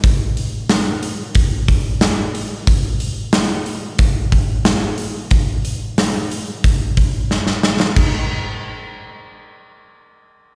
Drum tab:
CC |----------------|----------------|----------------|x---------------|
HH |o-o-o-o-o-o-o-o-|o-o-o-o-o-o-o-o-|o-o-o-o-o-o-----|----------------|
SD |----o-------o---|----o-------o---|----o-------oooo|----------------|
BD |o-------o-o-----|o-------o-o-----|o-------o-o-----|o---------------|